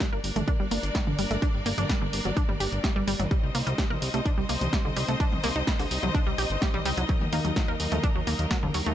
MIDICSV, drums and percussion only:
0, 0, Header, 1, 2, 480
1, 0, Start_track
1, 0, Key_signature, -2, "minor"
1, 0, Tempo, 472441
1, 1444, Time_signature, 4, 2, 24, 8
1, 9086, End_track
2, 0, Start_track
2, 0, Title_t, "Drums"
2, 4, Note_on_c, 9, 36, 108
2, 4, Note_on_c, 9, 38, 115
2, 4, Note_on_c, 9, 42, 53
2, 105, Note_off_c, 9, 36, 0
2, 105, Note_off_c, 9, 38, 0
2, 105, Note_off_c, 9, 42, 0
2, 244, Note_on_c, 9, 46, 103
2, 345, Note_off_c, 9, 46, 0
2, 366, Note_on_c, 9, 42, 54
2, 366, Note_on_c, 9, 47, 83
2, 468, Note_off_c, 9, 42, 0
2, 468, Note_off_c, 9, 47, 0
2, 484, Note_on_c, 9, 36, 113
2, 484, Note_on_c, 9, 42, 53
2, 585, Note_off_c, 9, 36, 0
2, 586, Note_off_c, 9, 42, 0
2, 724, Note_on_c, 9, 46, 100
2, 826, Note_off_c, 9, 46, 0
2, 847, Note_on_c, 9, 42, 55
2, 949, Note_off_c, 9, 42, 0
2, 964, Note_on_c, 9, 36, 112
2, 964, Note_on_c, 9, 38, 120
2, 964, Note_on_c, 9, 42, 57
2, 1066, Note_off_c, 9, 36, 0
2, 1066, Note_off_c, 9, 38, 0
2, 1066, Note_off_c, 9, 42, 0
2, 1087, Note_on_c, 9, 47, 83
2, 1189, Note_off_c, 9, 47, 0
2, 1204, Note_on_c, 9, 46, 107
2, 1306, Note_off_c, 9, 46, 0
2, 1328, Note_on_c, 9, 42, 54
2, 1429, Note_off_c, 9, 42, 0
2, 1444, Note_on_c, 9, 36, 114
2, 1445, Note_on_c, 9, 42, 52
2, 1546, Note_off_c, 9, 36, 0
2, 1547, Note_off_c, 9, 42, 0
2, 1685, Note_on_c, 9, 46, 105
2, 1787, Note_off_c, 9, 46, 0
2, 1808, Note_on_c, 9, 42, 56
2, 1808, Note_on_c, 9, 47, 83
2, 1909, Note_off_c, 9, 42, 0
2, 1909, Note_off_c, 9, 47, 0
2, 1924, Note_on_c, 9, 36, 112
2, 1926, Note_on_c, 9, 38, 115
2, 1926, Note_on_c, 9, 42, 51
2, 2025, Note_off_c, 9, 36, 0
2, 2027, Note_off_c, 9, 38, 0
2, 2027, Note_off_c, 9, 42, 0
2, 2165, Note_on_c, 9, 46, 104
2, 2267, Note_off_c, 9, 46, 0
2, 2288, Note_on_c, 9, 42, 56
2, 2389, Note_off_c, 9, 42, 0
2, 2404, Note_on_c, 9, 36, 118
2, 2404, Note_on_c, 9, 42, 52
2, 2505, Note_off_c, 9, 36, 0
2, 2506, Note_off_c, 9, 42, 0
2, 2528, Note_on_c, 9, 47, 83
2, 2629, Note_off_c, 9, 47, 0
2, 2645, Note_on_c, 9, 46, 97
2, 2747, Note_off_c, 9, 46, 0
2, 2767, Note_on_c, 9, 42, 54
2, 2869, Note_off_c, 9, 42, 0
2, 2884, Note_on_c, 9, 36, 117
2, 2885, Note_on_c, 9, 38, 124
2, 2885, Note_on_c, 9, 42, 56
2, 2985, Note_off_c, 9, 36, 0
2, 2986, Note_off_c, 9, 38, 0
2, 2986, Note_off_c, 9, 42, 0
2, 3125, Note_on_c, 9, 46, 107
2, 3226, Note_off_c, 9, 46, 0
2, 3247, Note_on_c, 9, 42, 54
2, 3247, Note_on_c, 9, 47, 87
2, 3349, Note_off_c, 9, 42, 0
2, 3349, Note_off_c, 9, 47, 0
2, 3364, Note_on_c, 9, 36, 120
2, 3365, Note_on_c, 9, 42, 52
2, 3465, Note_off_c, 9, 36, 0
2, 3466, Note_off_c, 9, 42, 0
2, 3604, Note_on_c, 9, 46, 104
2, 3706, Note_off_c, 9, 46, 0
2, 3727, Note_on_c, 9, 42, 51
2, 3829, Note_off_c, 9, 42, 0
2, 3844, Note_on_c, 9, 36, 115
2, 3844, Note_on_c, 9, 38, 115
2, 3844, Note_on_c, 9, 42, 51
2, 3945, Note_off_c, 9, 36, 0
2, 3946, Note_off_c, 9, 38, 0
2, 3946, Note_off_c, 9, 42, 0
2, 3967, Note_on_c, 9, 47, 90
2, 4069, Note_off_c, 9, 47, 0
2, 4084, Note_on_c, 9, 46, 107
2, 4186, Note_off_c, 9, 46, 0
2, 4206, Note_on_c, 9, 42, 53
2, 4308, Note_off_c, 9, 42, 0
2, 4323, Note_on_c, 9, 36, 120
2, 4324, Note_on_c, 9, 42, 51
2, 4425, Note_off_c, 9, 36, 0
2, 4426, Note_off_c, 9, 42, 0
2, 4564, Note_on_c, 9, 46, 103
2, 4666, Note_off_c, 9, 46, 0
2, 4687, Note_on_c, 9, 42, 54
2, 4687, Note_on_c, 9, 47, 85
2, 4789, Note_off_c, 9, 42, 0
2, 4789, Note_off_c, 9, 47, 0
2, 4804, Note_on_c, 9, 36, 121
2, 4805, Note_on_c, 9, 38, 122
2, 4805, Note_on_c, 9, 42, 55
2, 4905, Note_off_c, 9, 36, 0
2, 4907, Note_off_c, 9, 38, 0
2, 4907, Note_off_c, 9, 42, 0
2, 5044, Note_on_c, 9, 46, 108
2, 5146, Note_off_c, 9, 46, 0
2, 5167, Note_on_c, 9, 42, 51
2, 5268, Note_off_c, 9, 42, 0
2, 5284, Note_on_c, 9, 36, 120
2, 5284, Note_on_c, 9, 42, 50
2, 5385, Note_off_c, 9, 36, 0
2, 5386, Note_off_c, 9, 42, 0
2, 5407, Note_on_c, 9, 47, 88
2, 5508, Note_off_c, 9, 47, 0
2, 5523, Note_on_c, 9, 46, 110
2, 5625, Note_off_c, 9, 46, 0
2, 5764, Note_on_c, 9, 36, 115
2, 5765, Note_on_c, 9, 38, 112
2, 5765, Note_on_c, 9, 42, 48
2, 5865, Note_off_c, 9, 36, 0
2, 5866, Note_off_c, 9, 38, 0
2, 5866, Note_off_c, 9, 42, 0
2, 5888, Note_on_c, 9, 46, 61
2, 5989, Note_off_c, 9, 46, 0
2, 6005, Note_on_c, 9, 46, 104
2, 6107, Note_off_c, 9, 46, 0
2, 6127, Note_on_c, 9, 42, 48
2, 6127, Note_on_c, 9, 47, 89
2, 6229, Note_off_c, 9, 42, 0
2, 6229, Note_off_c, 9, 47, 0
2, 6244, Note_on_c, 9, 36, 122
2, 6246, Note_on_c, 9, 42, 51
2, 6345, Note_off_c, 9, 36, 0
2, 6348, Note_off_c, 9, 42, 0
2, 6485, Note_on_c, 9, 46, 102
2, 6587, Note_off_c, 9, 46, 0
2, 6607, Note_on_c, 9, 42, 51
2, 6709, Note_off_c, 9, 42, 0
2, 6724, Note_on_c, 9, 36, 120
2, 6725, Note_on_c, 9, 38, 114
2, 6725, Note_on_c, 9, 42, 52
2, 6825, Note_off_c, 9, 36, 0
2, 6826, Note_off_c, 9, 38, 0
2, 6826, Note_off_c, 9, 42, 0
2, 6846, Note_on_c, 9, 47, 92
2, 6948, Note_off_c, 9, 47, 0
2, 6964, Note_on_c, 9, 46, 105
2, 7066, Note_off_c, 9, 46, 0
2, 7086, Note_on_c, 9, 42, 53
2, 7188, Note_off_c, 9, 42, 0
2, 7204, Note_on_c, 9, 36, 113
2, 7204, Note_on_c, 9, 42, 55
2, 7305, Note_off_c, 9, 36, 0
2, 7305, Note_off_c, 9, 42, 0
2, 7326, Note_on_c, 9, 47, 91
2, 7427, Note_off_c, 9, 47, 0
2, 7443, Note_on_c, 9, 46, 101
2, 7544, Note_off_c, 9, 46, 0
2, 7566, Note_on_c, 9, 42, 51
2, 7668, Note_off_c, 9, 42, 0
2, 7683, Note_on_c, 9, 38, 105
2, 7683, Note_on_c, 9, 42, 48
2, 7684, Note_on_c, 9, 36, 116
2, 7785, Note_off_c, 9, 36, 0
2, 7785, Note_off_c, 9, 38, 0
2, 7785, Note_off_c, 9, 42, 0
2, 7922, Note_on_c, 9, 46, 103
2, 8024, Note_off_c, 9, 46, 0
2, 8045, Note_on_c, 9, 42, 53
2, 8045, Note_on_c, 9, 47, 94
2, 8146, Note_off_c, 9, 42, 0
2, 8146, Note_off_c, 9, 47, 0
2, 8163, Note_on_c, 9, 42, 50
2, 8164, Note_on_c, 9, 36, 118
2, 8265, Note_off_c, 9, 36, 0
2, 8265, Note_off_c, 9, 42, 0
2, 8403, Note_on_c, 9, 46, 95
2, 8504, Note_off_c, 9, 46, 0
2, 8525, Note_on_c, 9, 42, 51
2, 8627, Note_off_c, 9, 42, 0
2, 8643, Note_on_c, 9, 38, 116
2, 8643, Note_on_c, 9, 42, 54
2, 8644, Note_on_c, 9, 36, 115
2, 8745, Note_off_c, 9, 36, 0
2, 8745, Note_off_c, 9, 38, 0
2, 8745, Note_off_c, 9, 42, 0
2, 8765, Note_on_c, 9, 47, 94
2, 8867, Note_off_c, 9, 47, 0
2, 8882, Note_on_c, 9, 46, 100
2, 8984, Note_off_c, 9, 46, 0
2, 9005, Note_on_c, 9, 42, 54
2, 9086, Note_off_c, 9, 42, 0
2, 9086, End_track
0, 0, End_of_file